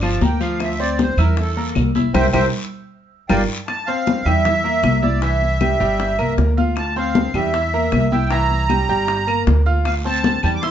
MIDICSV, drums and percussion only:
0, 0, Header, 1, 2, 480
1, 0, Start_track
1, 0, Tempo, 385852
1, 744, Time_signature, 4, 2, 24, 8
1, 13322, End_track
2, 0, Start_track
2, 0, Title_t, "Drums"
2, 22, Note_on_c, 9, 75, 68
2, 30, Note_on_c, 9, 60, 32
2, 33, Note_on_c, 9, 63, 38
2, 146, Note_off_c, 9, 75, 0
2, 154, Note_off_c, 9, 60, 0
2, 157, Note_off_c, 9, 63, 0
2, 266, Note_on_c, 9, 60, 35
2, 266, Note_on_c, 9, 61, 74
2, 269, Note_on_c, 9, 63, 87
2, 269, Note_on_c, 9, 73, 71
2, 390, Note_off_c, 9, 60, 0
2, 390, Note_off_c, 9, 61, 0
2, 393, Note_off_c, 9, 63, 0
2, 393, Note_off_c, 9, 73, 0
2, 507, Note_on_c, 9, 73, 69
2, 511, Note_on_c, 9, 63, 34
2, 631, Note_off_c, 9, 73, 0
2, 636, Note_off_c, 9, 63, 0
2, 741, Note_on_c, 9, 75, 61
2, 748, Note_on_c, 9, 74, 68
2, 751, Note_on_c, 9, 60, 69
2, 761, Note_on_c, 9, 63, 34
2, 865, Note_off_c, 9, 75, 0
2, 872, Note_off_c, 9, 74, 0
2, 875, Note_off_c, 9, 60, 0
2, 885, Note_off_c, 9, 63, 0
2, 991, Note_on_c, 9, 60, 35
2, 1001, Note_on_c, 9, 63, 35
2, 1115, Note_off_c, 9, 60, 0
2, 1125, Note_off_c, 9, 63, 0
2, 1226, Note_on_c, 9, 73, 64
2, 1231, Note_on_c, 9, 60, 60
2, 1233, Note_on_c, 9, 63, 94
2, 1351, Note_off_c, 9, 73, 0
2, 1356, Note_off_c, 9, 60, 0
2, 1358, Note_off_c, 9, 63, 0
2, 1467, Note_on_c, 9, 60, 33
2, 1467, Note_on_c, 9, 75, 73
2, 1470, Note_on_c, 9, 73, 74
2, 1479, Note_on_c, 9, 63, 33
2, 1479, Note_on_c, 9, 64, 87
2, 1591, Note_off_c, 9, 60, 0
2, 1591, Note_off_c, 9, 75, 0
2, 1595, Note_off_c, 9, 73, 0
2, 1603, Note_off_c, 9, 63, 0
2, 1603, Note_off_c, 9, 64, 0
2, 1705, Note_on_c, 9, 74, 66
2, 1706, Note_on_c, 9, 60, 71
2, 1717, Note_on_c, 9, 63, 38
2, 1830, Note_off_c, 9, 74, 0
2, 1831, Note_off_c, 9, 60, 0
2, 1842, Note_off_c, 9, 63, 0
2, 1953, Note_on_c, 9, 60, 33
2, 1956, Note_on_c, 9, 63, 37
2, 2077, Note_off_c, 9, 60, 0
2, 2080, Note_off_c, 9, 63, 0
2, 2181, Note_on_c, 9, 75, 67
2, 2187, Note_on_c, 9, 63, 80
2, 2187, Note_on_c, 9, 73, 69
2, 2189, Note_on_c, 9, 60, 32
2, 2189, Note_on_c, 9, 61, 77
2, 2306, Note_off_c, 9, 75, 0
2, 2312, Note_off_c, 9, 63, 0
2, 2312, Note_off_c, 9, 73, 0
2, 2313, Note_off_c, 9, 60, 0
2, 2313, Note_off_c, 9, 61, 0
2, 2427, Note_on_c, 9, 73, 68
2, 2435, Note_on_c, 9, 63, 89
2, 2552, Note_off_c, 9, 73, 0
2, 2559, Note_off_c, 9, 63, 0
2, 2669, Note_on_c, 9, 74, 84
2, 2669, Note_on_c, 9, 75, 95
2, 2671, Note_on_c, 9, 60, 103
2, 2680, Note_on_c, 9, 64, 100
2, 2794, Note_off_c, 9, 74, 0
2, 2794, Note_off_c, 9, 75, 0
2, 2795, Note_off_c, 9, 60, 0
2, 2804, Note_off_c, 9, 64, 0
2, 2904, Note_on_c, 9, 75, 94
2, 2905, Note_on_c, 9, 74, 89
2, 2912, Note_on_c, 9, 60, 95
2, 2918, Note_on_c, 9, 64, 102
2, 3028, Note_off_c, 9, 75, 0
2, 3029, Note_off_c, 9, 74, 0
2, 3036, Note_off_c, 9, 60, 0
2, 3042, Note_off_c, 9, 64, 0
2, 4098, Note_on_c, 9, 60, 88
2, 4099, Note_on_c, 9, 75, 102
2, 4109, Note_on_c, 9, 64, 96
2, 4110, Note_on_c, 9, 74, 94
2, 4223, Note_off_c, 9, 60, 0
2, 4224, Note_off_c, 9, 75, 0
2, 4233, Note_off_c, 9, 64, 0
2, 4234, Note_off_c, 9, 74, 0
2, 4580, Note_on_c, 9, 60, 69
2, 4584, Note_on_c, 9, 75, 64
2, 4593, Note_on_c, 9, 63, 36
2, 4705, Note_off_c, 9, 60, 0
2, 4708, Note_off_c, 9, 75, 0
2, 4718, Note_off_c, 9, 63, 0
2, 4836, Note_on_c, 9, 63, 36
2, 4960, Note_off_c, 9, 63, 0
2, 5065, Note_on_c, 9, 60, 62
2, 5068, Note_on_c, 9, 63, 96
2, 5189, Note_off_c, 9, 60, 0
2, 5193, Note_off_c, 9, 63, 0
2, 5300, Note_on_c, 9, 75, 72
2, 5311, Note_on_c, 9, 63, 37
2, 5311, Note_on_c, 9, 64, 86
2, 5425, Note_off_c, 9, 75, 0
2, 5435, Note_off_c, 9, 63, 0
2, 5435, Note_off_c, 9, 64, 0
2, 5539, Note_on_c, 9, 60, 72
2, 5550, Note_on_c, 9, 63, 33
2, 5550, Note_on_c, 9, 64, 75
2, 5664, Note_off_c, 9, 60, 0
2, 5674, Note_off_c, 9, 63, 0
2, 5674, Note_off_c, 9, 64, 0
2, 5785, Note_on_c, 9, 63, 42
2, 5910, Note_off_c, 9, 63, 0
2, 6014, Note_on_c, 9, 75, 72
2, 6016, Note_on_c, 9, 60, 65
2, 6016, Note_on_c, 9, 61, 75
2, 6024, Note_on_c, 9, 63, 85
2, 6138, Note_off_c, 9, 75, 0
2, 6141, Note_off_c, 9, 60, 0
2, 6141, Note_off_c, 9, 61, 0
2, 6148, Note_off_c, 9, 63, 0
2, 6265, Note_on_c, 9, 63, 87
2, 6389, Note_off_c, 9, 63, 0
2, 6494, Note_on_c, 9, 60, 70
2, 6511, Note_on_c, 9, 63, 37
2, 6618, Note_off_c, 9, 60, 0
2, 6635, Note_off_c, 9, 63, 0
2, 6737, Note_on_c, 9, 60, 35
2, 6746, Note_on_c, 9, 63, 37
2, 6861, Note_off_c, 9, 60, 0
2, 6871, Note_off_c, 9, 63, 0
2, 6974, Note_on_c, 9, 75, 70
2, 6977, Note_on_c, 9, 60, 65
2, 6982, Note_on_c, 9, 63, 60
2, 7099, Note_off_c, 9, 75, 0
2, 7101, Note_off_c, 9, 60, 0
2, 7107, Note_off_c, 9, 63, 0
2, 7218, Note_on_c, 9, 60, 36
2, 7227, Note_on_c, 9, 63, 38
2, 7342, Note_off_c, 9, 60, 0
2, 7351, Note_off_c, 9, 63, 0
2, 7461, Note_on_c, 9, 60, 74
2, 7463, Note_on_c, 9, 63, 36
2, 7585, Note_off_c, 9, 60, 0
2, 7588, Note_off_c, 9, 63, 0
2, 7698, Note_on_c, 9, 75, 66
2, 7711, Note_on_c, 9, 63, 41
2, 7822, Note_off_c, 9, 75, 0
2, 7835, Note_off_c, 9, 63, 0
2, 7939, Note_on_c, 9, 60, 66
2, 7939, Note_on_c, 9, 61, 85
2, 7942, Note_on_c, 9, 63, 79
2, 8063, Note_off_c, 9, 60, 0
2, 8063, Note_off_c, 9, 61, 0
2, 8066, Note_off_c, 9, 63, 0
2, 8184, Note_on_c, 9, 60, 36
2, 8184, Note_on_c, 9, 63, 71
2, 8308, Note_off_c, 9, 60, 0
2, 8308, Note_off_c, 9, 63, 0
2, 8407, Note_on_c, 9, 75, 59
2, 8419, Note_on_c, 9, 60, 68
2, 8424, Note_on_c, 9, 63, 32
2, 8531, Note_off_c, 9, 75, 0
2, 8543, Note_off_c, 9, 60, 0
2, 8549, Note_off_c, 9, 63, 0
2, 8667, Note_on_c, 9, 63, 37
2, 8792, Note_off_c, 9, 63, 0
2, 8897, Note_on_c, 9, 63, 104
2, 8898, Note_on_c, 9, 60, 63
2, 9021, Note_off_c, 9, 63, 0
2, 9022, Note_off_c, 9, 60, 0
2, 9134, Note_on_c, 9, 75, 75
2, 9148, Note_on_c, 9, 63, 36
2, 9148, Note_on_c, 9, 64, 90
2, 9258, Note_off_c, 9, 75, 0
2, 9272, Note_off_c, 9, 63, 0
2, 9272, Note_off_c, 9, 64, 0
2, 9378, Note_on_c, 9, 60, 72
2, 9382, Note_on_c, 9, 63, 37
2, 9502, Note_off_c, 9, 60, 0
2, 9507, Note_off_c, 9, 63, 0
2, 9627, Note_on_c, 9, 63, 40
2, 9751, Note_off_c, 9, 63, 0
2, 9853, Note_on_c, 9, 75, 70
2, 9855, Note_on_c, 9, 60, 69
2, 9855, Note_on_c, 9, 61, 77
2, 9860, Note_on_c, 9, 63, 78
2, 9977, Note_off_c, 9, 75, 0
2, 9979, Note_off_c, 9, 60, 0
2, 9979, Note_off_c, 9, 61, 0
2, 9984, Note_off_c, 9, 63, 0
2, 10100, Note_on_c, 9, 63, 85
2, 10224, Note_off_c, 9, 63, 0
2, 10333, Note_on_c, 9, 60, 74
2, 10342, Note_on_c, 9, 63, 36
2, 10457, Note_off_c, 9, 60, 0
2, 10467, Note_off_c, 9, 63, 0
2, 10579, Note_on_c, 9, 60, 31
2, 10582, Note_on_c, 9, 63, 35
2, 10703, Note_off_c, 9, 60, 0
2, 10706, Note_off_c, 9, 63, 0
2, 10813, Note_on_c, 9, 75, 60
2, 10818, Note_on_c, 9, 63, 62
2, 10820, Note_on_c, 9, 60, 60
2, 10937, Note_off_c, 9, 75, 0
2, 10943, Note_off_c, 9, 63, 0
2, 10944, Note_off_c, 9, 60, 0
2, 11058, Note_on_c, 9, 60, 35
2, 11059, Note_on_c, 9, 63, 36
2, 11182, Note_off_c, 9, 60, 0
2, 11184, Note_off_c, 9, 63, 0
2, 11300, Note_on_c, 9, 60, 74
2, 11304, Note_on_c, 9, 63, 37
2, 11424, Note_off_c, 9, 60, 0
2, 11428, Note_off_c, 9, 63, 0
2, 11545, Note_on_c, 9, 63, 35
2, 11546, Note_on_c, 9, 75, 69
2, 11669, Note_off_c, 9, 63, 0
2, 11670, Note_off_c, 9, 75, 0
2, 11783, Note_on_c, 9, 60, 72
2, 11783, Note_on_c, 9, 61, 76
2, 11786, Note_on_c, 9, 63, 85
2, 11907, Note_off_c, 9, 60, 0
2, 11907, Note_off_c, 9, 61, 0
2, 11910, Note_off_c, 9, 63, 0
2, 12018, Note_on_c, 9, 60, 33
2, 12143, Note_off_c, 9, 60, 0
2, 12258, Note_on_c, 9, 60, 72
2, 12261, Note_on_c, 9, 75, 67
2, 12263, Note_on_c, 9, 74, 73
2, 12272, Note_on_c, 9, 63, 36
2, 12383, Note_off_c, 9, 60, 0
2, 12386, Note_off_c, 9, 75, 0
2, 12388, Note_off_c, 9, 74, 0
2, 12396, Note_off_c, 9, 63, 0
2, 12518, Note_on_c, 9, 63, 36
2, 12642, Note_off_c, 9, 63, 0
2, 12741, Note_on_c, 9, 63, 97
2, 12741, Note_on_c, 9, 73, 69
2, 12743, Note_on_c, 9, 60, 63
2, 12865, Note_off_c, 9, 63, 0
2, 12865, Note_off_c, 9, 73, 0
2, 12867, Note_off_c, 9, 60, 0
2, 12975, Note_on_c, 9, 75, 71
2, 12983, Note_on_c, 9, 73, 69
2, 12986, Note_on_c, 9, 63, 37
2, 12986, Note_on_c, 9, 64, 86
2, 13100, Note_off_c, 9, 75, 0
2, 13107, Note_off_c, 9, 73, 0
2, 13110, Note_off_c, 9, 63, 0
2, 13110, Note_off_c, 9, 64, 0
2, 13223, Note_on_c, 9, 60, 68
2, 13225, Note_on_c, 9, 74, 77
2, 13226, Note_on_c, 9, 63, 35
2, 13322, Note_off_c, 9, 60, 0
2, 13322, Note_off_c, 9, 63, 0
2, 13322, Note_off_c, 9, 74, 0
2, 13322, End_track
0, 0, End_of_file